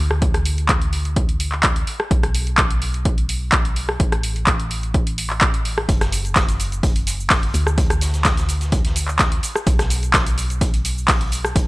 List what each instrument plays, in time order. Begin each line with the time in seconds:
0.00 fm bass D2
0.11 cross-stick
0.22 kick, closed hi-hat
0.34 cross-stick, closed hi-hat
0.45 open hi-hat
0.58 closed hi-hat
0.69 kick, clap, closed hi-hat
0.82 closed hi-hat
0.93 open hi-hat
1.05 closed hi-hat
1.16 kick, closed hi-hat
1.29 closed hi-hat
1.40 open hi-hat
1.52 clap
1.63 kick, clap, closed hi-hat
1.76 closed hi-hat
1.87 open hi-hat
2.00 cross-stick
2.11 fm bass B1, kick, closed hi-hat
2.23 cross-stick, closed hi-hat
2.35 open hi-hat
2.47 closed hi-hat
2.58 kick, clap, closed hi-hat
2.71 closed hi-hat
2.82 open hi-hat
2.94 closed hi-hat
3.05 kick, closed hi-hat
3.18 closed hi-hat
3.29 open hi-hat
3.52 kick, clap, closed hi-hat
3.65 closed hi-hat
3.76 open hi-hat
3.89 cross-stick
4.00 fm bass A1, kick, closed hi-hat
4.12 cross-stick, closed hi-hat
4.23 open hi-hat
4.36 closed hi-hat
4.47 kick, clap, closed hi-hat
4.60 closed hi-hat
4.71 open hi-hat
4.83 closed hi-hat
4.94 kick, closed hi-hat
5.07 closed hi-hat
5.18 open hi-hat
5.30 clap
5.41 kick, clap, closed hi-hat
5.54 closed hi-hat
5.65 open hi-hat
5.78 cross-stick
5.89 fm bass F#1, kick, closed hi-hat, cabasa
6.01 cross-stick, snare, closed hi-hat, cabasa
6.12 closed hi-hat, open hi-hat, cabasa
6.25 closed hi-hat, cabasa
6.36 kick, snare, clap, closed hi-hat, cabasa
6.49 closed hi-hat, cabasa
6.60 closed hi-hat, open hi-hat, cabasa
6.72 closed hi-hat, cabasa
6.83 kick, closed hi-hat, cabasa
6.95 closed hi-hat
7.07 closed hi-hat, open hi-hat, cabasa
7.20 cabasa
7.30 kick, snare, clap, closed hi-hat, open hi-hat, cabasa
7.43 closed hi-hat
7.54 fm bass D2, closed hi-hat, open hi-hat, cabasa
7.67 cross-stick, cabasa
7.78 kick, closed hi-hat, cabasa
7.90 cross-stick, closed hi-hat, cabasa
8.01 snare, closed hi-hat, open hi-hat, cabasa
8.13 snare, closed hi-hat, cabasa
8.25 kick, snare, clap, closed hi-hat, cabasa
8.37 snare, closed hi-hat, cabasa
8.49 closed hi-hat, open hi-hat, cabasa
8.60 snare, closed hi-hat, cabasa
8.72 kick, closed hi-hat, cabasa
8.85 snare, closed hi-hat
8.96 closed hi-hat, open hi-hat, cabasa
9.08 clap, cabasa
9.19 kick, snare, clap, closed hi-hat, cabasa
9.32 closed hi-hat
9.43 closed hi-hat, open hi-hat, cabasa
9.56 cross-stick, cabasa
9.66 fm bass B1, kick, closed hi-hat, cabasa
9.79 cross-stick, snare, closed hi-hat, cabasa
9.90 closed hi-hat, open hi-hat, cabasa
10.03 closed hi-hat, cabasa
10.14 kick, snare, clap, closed hi-hat, cabasa
10.26 closed hi-hat, cabasa
10.37 closed hi-hat, open hi-hat, cabasa
10.50 closed hi-hat, cabasa
10.61 kick, closed hi-hat, cabasa
10.74 closed hi-hat
10.85 closed hi-hat, open hi-hat, cabasa
10.98 cabasa
11.08 kick, snare, clap, closed hi-hat, open hi-hat, cabasa
11.21 closed hi-hat
11.32 closed hi-hat, open hi-hat, cabasa
11.45 cross-stick, cabasa
11.55 fm bass A1, kick, closed hi-hat, cabasa